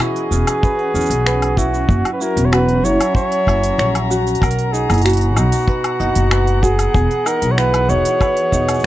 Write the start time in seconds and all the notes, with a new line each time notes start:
Already playing: E3 B3 C#4 F#4 G#4 D#5
0.00 C#4 E4 G#4 C#6, finger snap, cabasa, low woodblock
0.13 B4, open hi-hat
0.31 E1 C#4, cabasa
0.47 G#5, open hi-hat, cabasa, low woodblock
0.63 B4, kick, cabasa
0.79 F#5, open hi-hat
0.94 E2 C#4, cabasa
1.01 cabasa
1.06 cabasa
1.10 B1, open hi-hat, cabasa
1.26 B4 F#5, finger snap, cabasa
1.42 open hi-hat, low woodblock
1.57 E4 F#4, kick, cabasa
1.74 cabasa
1.89 F#1 F#3 F#5, kick, cabasa
2.05 open hi-hat, low woodblock
2.13 B4
2.20 E4 F#4 A#4, cabasa
2.31 A#5
2.37 E1, open hi-hat, cabasa
2.45 C#5
2.52 F#4 B4 F#5, finger snap, cabasa, low woodblock
2.69 open hi-hat
2.84 F#1 E4 C#5 E5, cabasa
3.00 G#5, open hi-hat, cabasa, low woodblock
3.15 C#5, kick, cabasa
3.31 F#5, open hi-hat
3.47 F#1 E4, kick, cabasa, low woodblock
3.63 open hi-hat, cabasa
3.78 A#1 C#5 F#5, finger snap, cabasa
3.95 open hi-hat, low woodblock
4.10 F#4, cabasa
4.27 open hi-hat, cabasa
4.35 open hi-hat
4.41 B1 B2 A#4 F#5, kick, open hi-hat, cabasa, low woodblock
4.51 open hi-hat
4.59 open hi-hat
4.72 D#4 G#4, cabasa
4.89 F#1 B3 G#5, open hi-hat, cabasa, low woodblock
4.94 open hi-hat
4.98 open hi-hat
5.02 F#4, open hi-hat
5.06 finger snap, open hi-hat, cabasa
5.09 open hi-hat
5.13 open hi-hat
5.17 F#5, open hi-hat
5.21 open hi-hat
5.36 B1 D#4, cabasa, low woodblock
5.52 open hi-hat, cabasa
5.55 cabasa
5.57 cabasa
5.62 cabasa
5.64 cabasa
5.67 B4 F#5, kick, cabasa
5.69 cabasa
5.84 open hi-hat, low woodblock
6.00 F#1 D#4 F#4, cabasa
6.15 F#1, open hi-hat, cabasa
6.31 B4 F#5, finger snap, cabasa, low woodblock
6.47 open hi-hat
6.62 F#4 G#4, kick, cabasa
6.79 G#5, open hi-hat, cabasa, low woodblock
6.94 E1 E3 G#4, kick, cabasa
7.11 F#5, open hi-hat
7.26 D#4 A#4, cabasa, low woodblock
7.42 B1 G#4, open hi-hat, cabasa
7.51 C#5
7.57 E4 B4 F#5, finger snap, cabasa
7.74 open hi-hat, low woodblock
7.89 E1 D#4 F#4 C#5, cabasa
8.05 open hi-hat, cabasa
8.21 B4 F#5, kick, cabasa, low woodblock
8.37 open hi-hat
8.52 E1 D#4, kick, cabasa
8.68 G#5, open hi-hat, cabasa, low woodblock
8.74 cabasa
8.79 cabasa